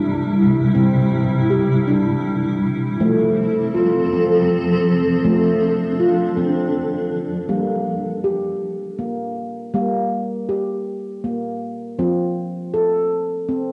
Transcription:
Already playing: C3 G3 D4 E4
0.75 C3 C4
1.50 G4
1.88 D4
2.99 F3 A3 C4 A4
3.75 F4
4.13 C4
5.24 F3 A3 D4
6.00 F4
6.37 C4
7.49 G3 A#3
8.24 G4
8.99 A#3
9.74 G3 A#3
10.49 G4
11.24 A#3
11.99 F3 C4
12.74 A4
13.49 C4

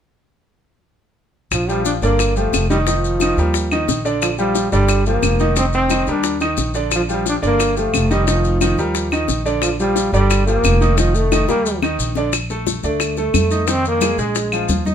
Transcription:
1.51 A#1 F3, high bongo, claves, maracas
1.69 F3 G3 F4 G4, maracas
1.85 D4, high bongo, maracas
2.02 G1 D3 A#3 D4 D5, high bongo, maracas
2.19 high bongo, claves, maracas
2.36 F3 A3 F4 G4, high bongo, maracas
2.52 F1, high bongo, low bongo, claves, maracas
2.70 D#3 G3 D#4 D#5, high bongo, maracas
2.87 D#3 F3 D#4 D#5, high bongo, maracas
3.04 maracas
3.20 D#3 D#4 D#5, high bongo, claves, maracas
3.37 D#2 G3 G4 A#4, high bongo, maracas
3.54 high bongo, maracas
3.71 D#3 D#4 D#5, high bongo, claves, maracas
3.88 A#1, high bongo, low bongo, maracas
4.05 D3 D4 D5, high bongo, maracas
4.22 F3, high bongo, claves, maracas
4.38 F3 G3 F4 G4, maracas
4.55 high bongo, maracas
4.72 G1 D3 G3 D4 D5, high bongo, maracas
4.89 high bongo, claves, maracas
5.06 F3 A#3 F4 G4, high bongo, maracas
5.23 F1, high bongo, low bongo, claves, maracas
5.39 D#3 D#4 D#5, high bongo, maracas
5.56 D#3 C4 D#4 D#5, high bongo, maracas
5.73 C4, maracas
5.90 D#3 D#4 D#5, high bongo, claves, maracas
6.07 D#2 G3 D4 G4 A#4, high bongo, maracas
6.24 high bongo, maracas
6.40 D#3 D#4 D#5, high bongo, claves, maracas
6.57 A#1, high bongo, low bongo, maracas
6.74 D3 D4 D5, high bongo, maracas
6.91 high bongo, claves, maracas
6.95 F3
7.09 F3 G3 F4 G4, maracas
7.26 D4, high bongo, maracas
7.42 G1 D3 A#3 D4 D5, high bongo, maracas
7.60 high bongo, claves, maracas
7.77 F3 A3 F4 G4, high bongo, maracas
7.93 F1, high bongo, low bongo, claves, maracas
8.11 D#3 G3 D#4 D#5, high bongo, maracas
8.27 D#3 F3 D#4 D#5, high bongo, maracas
8.44 maracas
8.61 D#3 D#4 D#5, high bongo, claves, maracas
8.78 D#2 G3 G4 A#4, high bongo, maracas
8.95 high bongo, maracas
9.11 D#3 D#4 D#5, high bongo, claves, maracas
9.28 A#1, high bongo, low bongo, maracas
9.46 D3 D4 D5, high bongo, maracas
9.62 F3, high bongo, claves, maracas
9.80 F3 G3 F4 G4, maracas
9.96 high bongo, maracas
10.12 G1 D3 G3 D4 D5, high bongo, maracas
10.30 high bongo, claves, maracas
10.46 F3 A#3 F4 G4, high bongo, maracas
10.63 F1, high bongo, low bongo, claves, maracas
10.81 D#3 D#4 D#5, high bongo, maracas
10.97 D#3 F3 D#4 D#5, high bongo, maracas
11.15 A3, maracas
11.32 D#3 D#4 D#5, high bongo, claves, maracas
11.48 D#2 G3 A#3 G4 A#4, high bongo, maracas
11.66 maracas
11.82 D#3 D#4 D#5, low bongo, claves, maracas
11.99 A#1, maracas
12.15 D3 D4 D5, low bongo, maracas
12.33 high bongo, high conga, claves, maracas
12.50 A3 A4, high conga, maracas
12.67 high bongo, high conga, maracas
12.83 D2 A3 D4 D5, high bongo, high conga, maracas
13.00 high bongo, high conga, claves, maracas
13.17 A3 A4, high bongo, high conga, maracas
13.34 F2, high bongo, low bongo, high conga, claves, maracas
13.51 D#4 D#5, high bongo, maracas
13.67 D#3 C4 D#4, high bongo, high conga, maracas
13.85 A#3, high conga, maracas
14.01 G#3 G#4, high bongo, high conga, claves, maracas
14.18 A#1 G#3 G#4, high bongo, high conga, maracas
14.35 high bongo, high conga, maracas
14.52 F3 F4, high bongo, high conga, claves, maracas
14.69 D#2, high bongo, low bongo, high conga, maracas
14.85 D#4 D#5, high bongo, high conga, maracas

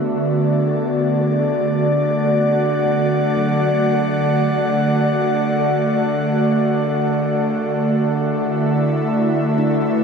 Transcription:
Already playing: D3 A3 B3 F#4 D5 E5
1.31 G#4
1.94 F#5
2.86 B3 F#4
3.37 F#3
8.21 E5
8.43 E4
9.58 D4
9.69 B4

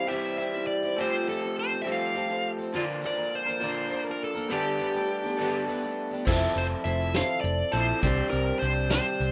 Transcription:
Already playing: C4
0.07 C3 E3 G3 G4 E5
0.12 C4 E4 G4
0.38 G3 C4 E4 G4 E5
0.54 C4 E4 G4
0.67 D5
0.83 C4 E4 G4
0.97 F3 G3 A3 C4 F4 G4
1.01 A4 C5
1.27 G3 C4 F4 A4
1.41 C4 F4 A4
1.59 C5
1.71 C4 F4 A4
1.82 F3 G4 E5
1.86 G3 A3 C4 F4 A4
1.92 F5
2.14 G3 C4 F4 A4
2.28 C4 F4 A4
2.58 C4 F4 A4
2.73 A#2 D3 F3 A#3 D4 F4 A#4
3.02 F3 A#3 D4 A#4
3.06 D5
3.17 F3 A#3 D4 A#4
3.35 C5
3.45 F3 A#3 D4 A#4
3.60 A#2 D3 F3 A#3 D4 F4 A#4
3.90 F3 A#3 D4 A#4
4.04 A#3 D4 A#4
4.08 F3 A#4
4.24 A4
4.35 F3 A#3 D4 A#4
4.49 G2 D3 G3 A3 B3 D4 G4 A4
4.79 A3 B3 D4 G4
4.94 A3 B3 D4 G4
5.23 A3 B3 D4 G4
5.37 G2 D3 G3 A3 B3 A4
5.41 D4 G4
5.68 A3 B3 D4 G4
5.83 A3 B3 D4 G4
6.11 A3 B3 D4 G4
6.25 F1 F3 C4 E4 A4, kick, crash
6.56 F1 C5, closed hi-hat
6.84 F1 F3 C4 E4 A4 E5, closed hi-hat
7.14 F3 C4 E4 A4 F5, snare, closed hi-hat
7.41 F1 D5, closed hi-hat
7.72 A#1 F3 C4 E4 A4 C5, closed hi-hat
8.01 C2 C3 G3 C4 D4 G4, kick, closed hi-hat
8.30 C2 A#4, closed hi-hat
8.59 C2 G3 C4 D4 C5, closed hi-hat
8.64 G4
8.90 C3 G3 C4 D4 G4 C5, snare, closed hi-hat
9.20 C2, closed hi-hat

